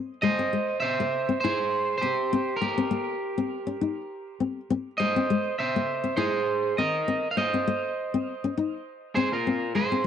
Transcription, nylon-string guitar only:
Already playing: C4
0.23 G#3
0.39 C4
0.53 G#3
1.00 A#3
1.29 C4
1.44 E4
2.02 C4
2.33 C4
2.62 A#3
2.78 C4
2.91 A#3
3.38 C4
3.67 C#4
3.81 D#4
4.40 C4
4.70 C4
5.00 G#3
5.16 C4
5.30 G#3
5.76 A#3
6.04 C4
6.17 E4
6.78 C4
7.08 C4
7.37 A#3
7.54 C4
7.67 A#3
8.14 C4
8.44 C#4
8.57 D#4
9.17 C4
9.47 C4
9.75 G#3
9.92 C4

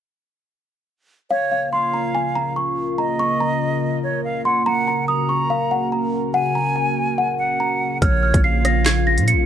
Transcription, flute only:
1.31 C#5
1.72 F5
2.99 D#5
4.04 C#5
4.24 F5
4.45 F#5
4.66 F#5
5.08 A#5
6.34 G#5
7.39 F#5
8.02 C#5
8.44 F5

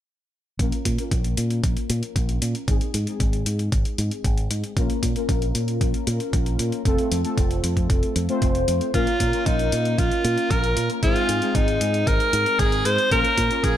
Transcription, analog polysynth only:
0.59 A#3 C#4 F4 A#4
0.98 A#3 C#4 F4 A#4
2.68 G#3 C4 D#4 G#4
3.07 G#3 C4 D#4 G#4
4.77 A#3 C#4 F4 A#4
5.16 A#3 C#4 F4 A#4
6.85 A3 C4 F4 A4
7.24 A3 C4 F4 A4
8.29 A3 C4 F4 C5
8.94 A#3 C#4 F4 A#4
9.33 A#3 C#4 F4 A#4
11.03 G#3 C4 D#4 G#4
11.42 G#3 C4 D#4 G#4
13.11 A#3 C#4 F4 A#4
13.51 A#3 C#4 F4 A#4

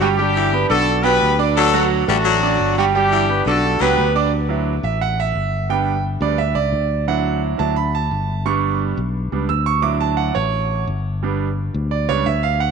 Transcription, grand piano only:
0.01 G3 G4 G5
0.19 G3 G4 G5
0.53 B3 B4 B5
0.69 D4 D5 D6
1.03 B3 B4 G5
1.39 D4 D5 D6
1.74 F#3 F#4 F#5
2.08 A3 A4 A5
2.43 D4 D5 D6
2.78 G3 G4 G5
2.95 G3 G4 G5
3.30 B3 B4 B5
3.47 D4 D5 D6
3.82 B3 B4 G5
4.15 D4 D5 D6
4.49 F#3 D4 E4
4.84 E5
5.01 F#5
5.20 E5
5.69 G3 B3 D4 G5
6.21 G3 B3 D4 D5
6.38 E5
6.55 D5
7.08 F#3 D4 E4 F#5
7.58 F#3 D4 E4 A5
7.76 B5
7.95 A5
8.46 G3 B3 D4 C#6
9.32 G3 B3 D4
9.49 E6
9.66 C#6
9.82 F#3 D4 E4 D6
10.01 A5
10.17 F#5
10.35 C#5
11.23 G3 B3 D4
11.91 D5
12.09 G3 B3 D4 C#5
12.26 E5
12.43 F5
12.60 F#5

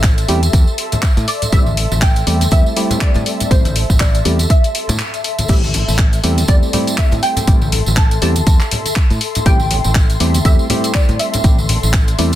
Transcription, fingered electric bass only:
Already playing: A1
0.29 E2
0.53 E2
1.17 A2
1.53 A1
1.92 A1
2.27 E2
2.52 E2
3.16 A2
3.51 A1
3.90 A1
4.25 E2
4.89 A2
5.49 A1
5.88 A1
6.24 E2
6.48 E2
7.12 A2
7.48 A1
7.87 A1
8.22 E2
8.47 E2
9.11 A2
9.46 A1
9.85 A1
10.20 E2
10.45 E2
11.09 A2
11.44 A1
11.83 A1
12.19 E2

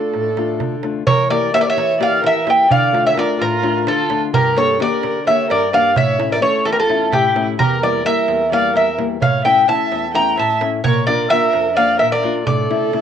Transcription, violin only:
Already playing: A4
1.08 A#4
1.31 A#4
1.55 C#5
1.61 A#4
1.68 C#5
2.01 D5
2.24 A#4
2.48 E5
2.70 D5
3.06 C#5
3.16 A#4
3.40 F4
3.88 F4
4.34 G4
4.58 A4
4.81 A#4
5.28 C#5
5.50 A#4
5.73 D5
5.97 C#5
6.32 A#4
6.43 A4
6.66 E4
6.72 G4
6.81 F4
7.13 E4
7.59 G4
7.82 A#4
8.06 A#4
8.52 D5
8.76 A#4
9.21 C#5
9.45 E5
9.68 E5
10.14 G5
10.38 E5
10.84 A#4
11.07 A#4
11.30 A#4
11.76 D5
11.99 A#4
12.11 A#4
12.45 A4

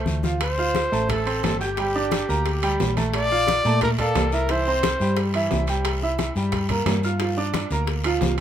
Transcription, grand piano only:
Already playing: A3 A4 C5
0.24 F3 F4 F5
0.58 F4 F5 F6
0.92 A3 A4 A5
1.26 C4 C5 C6
1.61 G4 G5 G6
1.78 G3 G4 G5
1.95 D4 D5 D6
2.29 A#3 A#4 A#5
2.63 G3 G4 G5
2.97 A3 A4 A5
3.31 F4 F5 F6
3.65 A3 A4 A5
3.99 A#3 D5 F5
4.33 E4 E5 E6
4.50 E3 E4 E5
4.67 C4 C5 C6
5.01 G3 G4 G5
5.35 E3 E4 E5
5.69 G3 G4 G5
6.03 E4 E5 E6
6.37 G3 G4 G5
6.70 A#3 A#4 A#5
7.04 F4 F5 F6
7.20 F3 F4 F5
7.37 D4 D5 D6
7.71 A#3 A#4 A#5
8.05 F3 F4 F5

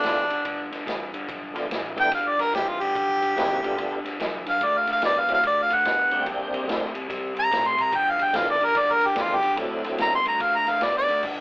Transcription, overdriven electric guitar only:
0.04 G2 E3
0.30 G2 D3
0.45 G2 D3
0.71 G2 D3
0.86 G2 E3
1.14 G2 D3
1.29 G2 D3
1.55 G2 D3
1.71 G2 E3
1.96 G2 D3
2.12 G2 D3
2.39 G2 D3
2.54 G2 E3
2.82 G2 D3
2.96 G2 D3
3.22 G2 D3
3.36 G2 E3
3.63 G2 D3
3.77 G2 D3
4.04 G2 D3
4.20 G2 E3
4.46 G2 D3
4.61 D3 A3
4.88 D3 A3
5.02 D3 B3
5.29 D3 A3
5.44 D3 A3
5.70 D3 A3
5.86 D3 B3
6.12 D3 A3
6.27 C3 G3
6.53 C3 G3
6.68 C3 A3
6.94 C3 G3
7.09 C3 G3
7.34 C3 G3
7.51 C3 A3
7.77 C3 G3
7.91 G2 D3
8.18 G2 D3
8.34 G2 E3
8.60 G2 D3
8.75 G2 D3
9.03 G2 D3
9.16 G2 E3
9.43 G2 D3
9.58 D3 A3
9.84 D3 A3
10.00 D3 B3
10.26 D3 A3
10.41 D3 A3
10.68 D3 A3
10.83 D3 B3
11.09 D3 A3
11.23 G2 D3

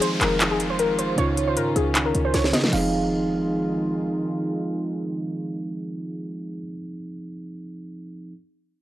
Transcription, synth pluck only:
0.01 C5
0.21 A#4
0.51 G#4
0.70 C5
0.79 A#4
0.99 C5
1.18 C#5
1.48 C5
1.57 A#4
1.76 G#4
2.06 A#4
2.25 C5
2.34 C#5
2.53 D#5
2.73 F5

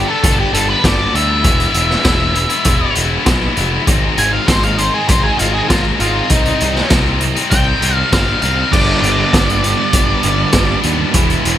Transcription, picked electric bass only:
0.24 G1
0.54 G1
0.84 G1
1.14 D2
1.45 E1
1.75 E1
2.06 E1
2.66 E1
2.97 E1
3.27 B1
3.58 F1
3.87 G#1
4.18 G#1
4.49 G#1
5.09 G#1
5.41 G#1
5.70 G#1
6.00 G#1
6.31 C2
6.62 C2
6.91 C2
7.52 C2
7.82 C2
8.13 G1
8.42 C2
8.74 G1
9.02 G1
9.34 G1
9.94 G1
10.24 G1
10.54 G1
10.84 D#2
11.15 E1
11.45 E1

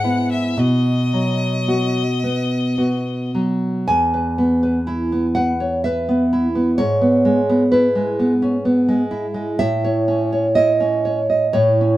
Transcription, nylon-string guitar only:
Already playing: G#2
0.04 B3 E4
0.57 B2
1.13 F#3
1.68 B3 F#4
2.24 B3
2.78 B3 F#4
3.35 F#3
3.88 E2 G#5
4.14 B4
4.38 B3
4.63 B4
4.87 E4
5.12 B3
5.35 B4 F#5
5.60 C#5
5.84 B4 E5
6.09 B3
6.33 E4
6.55 B3
6.78 G#2 C#5
7.01 B3
7.25 G#3
7.49 B3
7.72 E4 B4
7.95 G#3
8.19 B3
8.42 C#4
8.65 B3
8.88 G#3
9.11 E4
9.34 G#3
9.59 A2 E5
9.84 C#5
10.08 C#4
10.32 C#5
10.55 E4 D#5
10.80 C#4
11.05 C#5
11.30 D#5
11.53 A2 C#5
11.81 C#4

